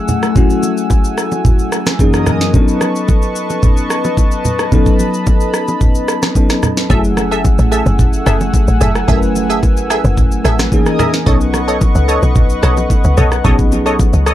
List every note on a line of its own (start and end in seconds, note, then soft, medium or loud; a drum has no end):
0.00 0.31 F#3 medium
0.00 0.32 A3 medium
0.00 1.96 A3 medium
0.00 0.32 C#4 medium
0.00 0.33 E4 medium
0.00 0.36 G#4 medium
0.00 1.96 F#5 medium
0.00 2.50 G#5 medium
0.00 1.95 E6 medium
0.08 high bongo medium
0.08 low conga medium
0.08 shaker medium
0.23 cross-stick medium
0.23 high bongo soft
0.23 shaker soft
0.35 1.96 F#3 medium
0.35 1.96 A3 medium
0.35 1.96 C#4 medium
0.35 1.97 E4 medium
0.35 1.97 F#4 medium
0.35 kick loud
0.35 low conga medium
0.35 shaker medium
0.50 shaker medium
0.63 low bongo medium
0.63 shaker medium
0.77 shaker medium
0.90 kick medium
0.90 high bongo medium
0.90 low bongo medium
0.90 shaker medium
1.04 shaker medium
1.18 cross-stick medium
1.18 shaker medium
1.32 low bongo medium
1.32 shaker soft
1.45 kick loud
1.45 low conga medium
1.45 shaker medium
1.59 shaker medium
1.72 cross-stick loud
1.72 shaker medium
1.86 cross-stick loud
1.86 snare medium
1.86 low bongo medium
1.86 shaker soft
1.99 2.54 F#2 medium
1.99 2.54 E3 medium
1.99 2.53 F#3 medium
1.99 2.54 A#3 medium
1.99 2.53 C#4 medium
1.99 2.55 D#4 medium
1.99 2.55 G#4 medium
1.99 2.53 A#4 medium
1.99 2.52 D#5 medium
1.99 2.53 D#6 medium
1.99 kick medium
1.99 high bongo medium
1.99 shaker medium
2.13 cross-stick medium
2.13 shaker medium
2.27 cross-stick medium
2.27 high bongo soft
2.27 low conga medium
2.27 shaker medium
2.41 snare medium
2.41 high bongo soft
2.41 shaker medium
2.53 4.68 F#3 medium
2.53 4.68 B3 medium
2.53 4.68 C#4 medium
2.53 2.61 D4 medium
2.53 4.69 A4 medium
2.53 6.86 B4 medium
2.53 6.86 D#5 medium
2.53 6.86 A5 medium
2.53 4.70 C#6 medium
2.53 kick loud
2.53 low conga medium
2.53 shaker medium
2.62 4.72 D#4 medium
2.68 shaker medium
2.81 cross-stick loud
2.81 low bongo medium
2.81 shaker medium
2.96 shaker medium
3.08 kick medium
3.08 high bongo medium
3.08 low bongo medium
3.08 shaker medium
3.22 shaker medium
3.36 shaker medium
3.50 low bongo medium
3.50 shaker soft
3.63 kick loud
3.63 low conga medium
3.63 shaker medium
3.77 shaker medium
3.90 cross-stick loud
3.90 shaker medium
4.04 low bongo medium
4.04 shaker soft
4.17 kick medium
4.17 high bongo medium
4.17 shaker medium
4.32 shaker medium
4.45 high bongo medium
4.45 low conga medium
4.45 shaker medium
4.59 cross-stick medium
4.59 high bongo soft
4.59 shaker soft
4.71 6.32 F#3 medium
4.71 6.33 B3 medium
4.71 6.33 C#4 medium
4.71 6.33 D#4 medium
4.71 6.34 A4 medium
4.71 6.88 B5 medium
4.71 kick loud
4.71 low conga medium
4.71 shaker medium
4.86 kick medium
4.86 shaker medium
4.99 low bongo medium
4.99 shaker loud
5.14 shaker medium
5.27 kick medium
5.27 high bongo medium
5.27 low bongo medium
5.27 shaker medium
5.40 shaker medium
5.54 cross-stick medium
5.54 shaker medium
5.68 low bongo medium
5.68 shaker soft
5.81 kick loud
5.81 low conga medium
5.81 shaker medium
5.95 shaker medium
6.08 cross-stick loud
6.08 shaker medium
6.22 cross-stick medium
6.22 snare medium
6.22 low bongo medium
6.22 shaker soft
6.35 6.88 F#3 medium
6.35 6.90 B3 medium
6.35 6.90 C#4 medium
6.35 6.91 D#4 medium
6.35 6.91 A4 medium
6.35 kick medium
6.35 high bongo medium
6.35 shaker medium
6.50 cross-stick medium
6.50 snare medium
6.50 shaker medium
6.63 cross-stick medium
6.63 high bongo medium
6.63 low conga medium
6.63 shaker medium
6.77 snare medium
6.77 high bongo soft
6.77 shaker soft
6.89 7.56 F#1 loud
6.89 9.04 F#3 medium
6.89 9.04 A3 medium
6.89 10.68 A3 medium
6.89 9.05 C#4 medium
6.89 9.05 E4 medium
6.89 6.98 F#4 medium
6.89 7.01 G#4 medium
6.89 7.01 A4 medium
6.89 7.01 E5 medium
6.89 10.68 F#5 medium
6.89 10.68 G#5 medium
6.89 10.68 E6 medium
6.89 kick loud
6.89 low conga medium
6.89 shaker medium
6.99 9.09 G#4 medium
7.04 shaker medium
7.17 cross-stick loud
7.17 low bongo medium
7.17 shaker medium
7.31 7.42 G#4 medium
7.31 7.42 A4 medium
7.31 7.42 E5 medium
7.31 shaker medium
7.44 kick loud
7.44 high bongo medium
7.44 low bongo medium
7.44 shaker medium
7.59 7.82 A1 loud
7.59 shaker medium
7.72 7.83 G#4 medium
7.72 7.83 A4 medium
7.72 7.83 E5 medium
7.72 shaker medium
7.86 8.21 F#1 medium
7.86 low bongo medium
7.86 shaker soft
7.99 kick loud
7.99 low conga medium
7.99 shaker medium
8.13 shaker medium
8.26 8.50 F#1 loud
8.26 8.37 G#4 medium
8.26 8.37 A4 medium
8.26 8.37 E5 medium
8.26 cross-stick medium
8.26 shaker medium
8.41 low bongo medium
8.41 shaker soft
8.54 kick medium
8.54 high bongo medium
8.54 shaker medium
8.68 8.79 A1 medium
8.68 shaker medium
8.81 9.04 F#1 medium
8.81 8.92 G#4 medium
8.81 8.92 A4 medium
8.81 8.92 E5 medium
8.81 high bongo medium
8.81 low conga medium
8.81 shaker medium
8.95 cross-stick medium
8.95 high bongo soft
8.95 shaker soft
9.08 9.79 F#1 loud
9.08 10.68 F#3 medium
9.08 10.69 A3 medium
9.08 10.69 C#4 medium
9.08 10.70 E4 medium
9.08 9.19 G#4 medium
9.08 9.19 A4 medium
9.08 9.16 A#4 medium
9.08 9.19 E5 loud
9.08 kick loud
9.08 low conga medium
9.08 shaker medium
9.17 10.73 B4 medium
9.22 shaker medium
9.36 low bongo medium
9.36 shaker medium
9.49 9.60 G#4 medium
9.49 9.60 A4 medium
9.49 9.60 E5 medium
9.49 shaker medium
9.63 kick medium
9.63 high bongo medium
9.63 low bongo medium
9.63 shaker medium
9.77 10.01 A1 medium
9.77 shaker medium
9.90 10.01 G#4 medium
9.90 10.01 A4 medium
9.90 10.01 E5 medium
9.90 cross-stick loud
9.90 shaker medium
10.04 10.39 F#1 loud
10.04 low bongo medium
10.04 shaker soft
10.18 kick loud
10.18 low conga medium
10.18 shaker medium
10.32 shaker medium
10.44 10.68 A1 loud
10.44 10.55 G#4 medium
10.44 10.56 A4 medium
10.44 10.56 E5 medium
10.44 cross-stick loud
10.44 shaker medium
10.59 cross-stick loud
10.59 snare medium
10.59 low bongo medium
10.59 shaker soft
10.72 11.27 E3 medium
10.72 11.27 A#3 medium
10.72 11.26 C#4 medium
10.72 11.27 D#4 medium
10.72 11.28 G#4 medium
10.72 11.26 A#4 medium
10.72 11.26 D#5 medium
10.72 11.26 G#5 medium
10.72 11.26 D#6 medium
10.72 kick medium
10.72 high bongo medium
10.72 shaker medium
10.86 cross-stick medium
10.86 shaker medium
10.99 11.10 G#4 medium
10.99 11.10 A#4 medium
10.99 11.10 D#5 medium
10.99 11.10 E5 medium
10.99 cross-stick medium
10.99 high bongo medium
10.99 low conga medium
10.99 shaker medium
11.14 snare medium
11.14 high bongo soft
11.14 shaker medium
11.26 11.92 B1 loud
11.26 13.40 F#3 medium
11.26 13.41 B3 medium
11.26 13.41 C#4 medium
11.26 13.42 D#4 medium
11.26 11.37 A4 medium
11.26 13.42 A4 medium
11.26 14.34 B4 medium
11.26 11.37 C#5 medium
11.26 11.38 D#5 loud
11.26 14.34 D#5 medium
11.26 14.34 F#5 medium
11.26 14.34 C#6 medium
11.26 kick loud
11.26 low conga medium
11.26 shaker medium
11.41 shaker medium
11.54 cross-stick loud
11.54 low bongo medium
11.54 shaker loud
11.68 11.78 A4 medium
11.68 11.78 C#5 medium
11.68 11.78 D#5 medium
11.68 shaker medium
11.81 kick medium
11.81 high bongo medium
11.81 low bongo medium
11.81 shaker medium
11.95 12.19 C#2 medium
11.95 shaker medium
12.08 12.19 A4 medium
12.08 12.19 C#5 medium
12.08 12.19 D#5 medium
12.08 shaker medium
12.23 12.57 B1 medium
12.23 low bongo medium
12.23 shaker soft
12.36 kick loud
12.36 low conga medium
12.36 shaker medium
12.50 shaker medium
12.63 12.86 B1 medium
12.63 12.74 A4 medium
12.63 12.74 C#5 medium
12.63 12.74 D#5 medium
12.63 cross-stick loud
12.63 shaker medium
12.77 low bongo medium
12.77 shaker soft
12.90 kick medium
12.90 high bongo medium
12.90 shaker medium
13.04 13.16 C#2 loud
13.04 shaker medium
13.17 13.41 B1 medium
13.17 13.28 A4 medium
13.17 13.28 C#5 medium
13.17 13.29 D#5 medium
13.17 high bongo medium
13.17 low conga medium
13.17 shaker medium
13.32 cross-stick medium
13.32 high bongo soft
13.32 shaker soft
13.44 14.10 B1 loud
13.44 13.71 F#3 medium
13.44 13.71 B3 medium
13.44 13.72 C#4 medium
13.44 13.72 D#4 medium
13.44 13.72 G#4 medium
13.44 13.55 A4 medium
13.44 13.56 C#5 medium
13.44 13.56 D#5 loud
13.44 kick loud
13.44 low conga medium
13.44 shaker medium
13.59 kick medium
13.59 shaker medium
13.72 14.34 F#3 medium
13.72 14.34 B3 medium
13.72 14.34 C#4 medium
13.72 14.34 D#4 medium
13.72 14.34 G#4 medium
13.72 low bongo medium
13.72 shaker loud
13.86 13.96 A4 medium
13.86 13.96 C#5 medium
13.86 13.96 D#5 medium
13.86 shaker medium
13.99 kick medium
13.99 high bongo medium
13.99 low bongo medium
13.99 shaker medium
14.13 14.34 C#2 medium
14.13 shaker medium
14.26 14.34 A4 medium
14.26 14.34 C#5 medium
14.26 14.34 D#5 medium
14.26 cross-stick medium
14.26 shaker medium